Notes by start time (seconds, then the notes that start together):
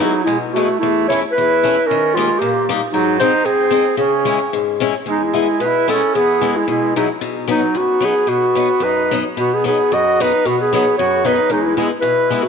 Already playing: E2
0.00 F#3 G#3 B3 D#4 E4
0.24 B2 G#3 E4
0.53 G#3 A3 B3 E4 F#4
0.79 E2 A3 E4
1.08 A3 C#4 E4 C#5
1.32 E4 B4
1.38 E2
1.63 A3 C#4 E4
1.86 C#4 A#4
1.91 D#3
2.14 G3 G#3 A#3 D#4 F4
2.39 A#2 A#3 G4
2.69 G3 A#3 D#4
2.92 G#2 F#3 D#4
3.19 G#3 C4 D#4 C5
3.45 G#2 C4 G#4
3.71 G#3 C4 D#4
3.97 C#3 C#4 G#4
4.25 G#3 C#4 E4
4.53 G#2
4.80 G#3 C#4 E4
5.06 E2 G#3 D#4
5.24 G#3 E4
5.33 G#3 B3 E4
5.40 G#3
5.60 B2 B4
5.66 E4
5.88 G#3 B3 E4 A4
5.93 C#4
6.15 E2 B3 G#4
6.41 G#3 B3 E4
6.56 G#3 E4
6.68 B2 G#3 E4
6.96 F#3 G#3 B3 D#4 E4
7.21 B2
7.47 F#3 B3 D#4
7.53 F#3
7.75 F#2 B3 F#4
8.00 F#3 B3 D#4
8.05 B3 G#4
8.27 B2 B3 F#4
8.55 F#3 B3 D#4
8.80 F#2 D#4 B4
9.11 F#3 B3 D#4
9.37 B2 B3 F#4
9.53 B3 G#4
9.64 F#3 B3 D#4 G#4
9.92 F#2 F#4 D#5
10.20 F#3 B3 D#4 B4
10.45 B2 B3 F#4
10.59 B3 G#4
10.72 F#3 B3 D#4 G#4
10.98 F#2 F#4 C#5
11.25 F#3 B3 D#4 B4
11.50 E2 G#3 D#4
11.62 G#3 E4
11.76 G#3 B3 E4
12.01 B2 E4 B4
12.30 G#3 B3 E4
12.43 A3 F#4